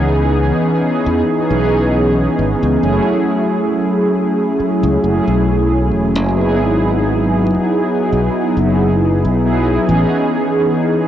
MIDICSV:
0, 0, Header, 1, 4, 480
1, 0, Start_track
1, 0, Tempo, 882353
1, 1540, Time_signature, 4, 2, 24, 8
1, 6027, End_track
2, 0, Start_track
2, 0, Title_t, "Analog polysynth"
2, 0, Program_c, 0, 90
2, 0, Control_c, 0, 64, 127
2, 0, Note_on_c, 0, 52, 89
2, 0, Note_on_c, 0, 59, 81
2, 0, Note_on_c, 0, 61, 79
2, 0, Note_on_c, 0, 63, 80
2, 0, Note_on_c, 0, 68, 94
2, 789, Note_off_c, 0, 52, 0
2, 791, Note_off_c, 0, 59, 0
2, 793, Note_off_c, 0, 61, 0
2, 795, Note_off_c, 0, 63, 0
2, 797, Note_off_c, 0, 68, 0
2, 811, Note_on_c, 0, 52, 85
2, 815, Note_on_c, 0, 59, 79
2, 819, Note_on_c, 0, 61, 78
2, 823, Note_on_c, 0, 63, 80
2, 827, Note_on_c, 0, 68, 93
2, 1509, Note_off_c, 0, 52, 0
2, 1511, Note_off_c, 0, 59, 0
2, 1513, Note_off_c, 0, 61, 0
2, 1515, Note_off_c, 0, 63, 0
2, 1517, Note_off_c, 0, 68, 0
2, 1531, Note_on_c, 0, 54, 87
2, 1535, Note_on_c, 0, 57, 84
2, 1539, Note_on_c, 0, 61, 84
2, 1543, Note_on_c, 0, 64, 84
2, 1546, Control_c, 0, 64, 0
2, 1547, Note_on_c, 0, 68, 95
2, 1628, Control_c, 0, 64, 127
2, 2709, Note_off_c, 0, 54, 0
2, 2711, Note_off_c, 0, 57, 0
2, 2713, Note_off_c, 0, 61, 0
2, 2715, Note_off_c, 0, 64, 0
2, 2717, Note_off_c, 0, 68, 0
2, 2732, Note_on_c, 0, 54, 84
2, 2736, Note_on_c, 0, 57, 76
2, 2740, Note_on_c, 0, 61, 78
2, 2744, Note_on_c, 0, 64, 74
2, 2748, Note_on_c, 0, 68, 94
2, 3429, Note_off_c, 0, 54, 0
2, 3431, Note_off_c, 0, 57, 0
2, 3433, Note_off_c, 0, 61, 0
2, 3435, Note_off_c, 0, 64, 0
2, 3437, Note_off_c, 0, 68, 0
2, 3451, Note_on_c, 0, 54, 88
2, 3456, Note_on_c, 0, 59, 83
2, 3459, Note_on_c, 0, 63, 80
2, 3463, Note_on_c, 0, 64, 79
2, 3466, Control_c, 0, 64, 0
2, 3468, Note_on_c, 0, 68, 98
2, 3556, Control_c, 0, 64, 127
2, 4629, Note_off_c, 0, 54, 0
2, 4631, Note_off_c, 0, 59, 0
2, 4633, Note_off_c, 0, 63, 0
2, 4635, Note_off_c, 0, 64, 0
2, 4637, Note_off_c, 0, 68, 0
2, 4656, Note_on_c, 0, 54, 71
2, 4658, Note_on_c, 0, 59, 67
2, 4659, Note_on_c, 0, 63, 66
2, 4662, Note_on_c, 0, 64, 64
2, 4664, Note_on_c, 0, 68, 78
2, 5111, Note_off_c, 0, 54, 0
2, 5113, Note_off_c, 0, 59, 0
2, 5113, Note_off_c, 0, 63, 0
2, 5115, Note_off_c, 0, 64, 0
2, 5115, Note_off_c, 0, 68, 0
2, 5136, Note_on_c, 0, 54, 88
2, 5139, Note_on_c, 0, 59, 80
2, 5141, Note_on_c, 0, 63, 78
2, 5143, Note_on_c, 0, 64, 79
2, 5145, Note_on_c, 0, 68, 93
2, 5352, Note_off_c, 0, 54, 0
2, 5353, Note_off_c, 0, 59, 0
2, 5354, Note_off_c, 0, 63, 0
2, 5355, Note_off_c, 0, 64, 0
2, 5356, Note_off_c, 0, 68, 0
2, 5372, Note_on_c, 0, 52, 88
2, 5376, Note_on_c, 0, 59, 82
2, 5380, Note_on_c, 0, 61, 80
2, 5384, Note_on_c, 0, 63, 85
2, 5386, Control_c, 0, 64, 0
2, 5388, Note_on_c, 0, 68, 101
2, 5483, Control_c, 0, 64, 127
2, 6027, Note_off_c, 0, 52, 0
2, 6027, Note_off_c, 0, 59, 0
2, 6027, Note_off_c, 0, 61, 0
2, 6027, Note_off_c, 0, 63, 0
2, 6027, Note_off_c, 0, 68, 0
2, 6027, End_track
3, 0, Start_track
3, 0, Title_t, "Fingered electric bass"
3, 0, Program_c, 1, 33
3, 0, Note_on_c, 1, 37, 93
3, 274, Note_off_c, 1, 37, 0
3, 578, Note_on_c, 1, 40, 78
3, 661, Note_off_c, 1, 40, 0
3, 819, Note_on_c, 1, 35, 77
3, 1235, Note_off_c, 1, 35, 0
3, 1299, Note_on_c, 1, 32, 75
3, 1382, Note_off_c, 1, 32, 0
3, 1429, Note_on_c, 1, 37, 89
3, 1499, Note_off_c, 1, 37, 0
3, 1540, Note_on_c, 1, 30, 87
3, 1622, Note_off_c, 1, 30, 0
3, 2629, Note_on_c, 1, 37, 90
3, 2700, Note_off_c, 1, 37, 0
3, 2741, Note_on_c, 1, 30, 91
3, 2823, Note_off_c, 1, 30, 0
3, 2870, Note_on_c, 1, 35, 75
3, 3220, Note_off_c, 1, 35, 0
3, 3220, Note_on_c, 1, 28, 86
3, 3349, Note_off_c, 1, 28, 0
3, 3349, Note_on_c, 1, 30, 88
3, 3589, Note_off_c, 1, 30, 0
3, 3589, Note_on_c, 1, 32, 97
3, 4116, Note_off_c, 1, 32, 0
3, 4419, Note_on_c, 1, 35, 78
3, 4502, Note_off_c, 1, 35, 0
3, 4659, Note_on_c, 1, 30, 80
3, 5026, Note_off_c, 1, 30, 0
3, 5029, Note_on_c, 1, 35, 78
3, 5315, Note_off_c, 1, 35, 0
3, 5379, Note_on_c, 1, 33, 88
3, 5462, Note_off_c, 1, 33, 0
3, 6027, End_track
4, 0, Start_track
4, 0, Title_t, "Muted fingered electric bass strokes"
4, 2501, Note_on_c, 9, 29, 42
4, 2555, Note_off_c, 9, 29, 0
4, 6027, End_track
0, 0, End_of_file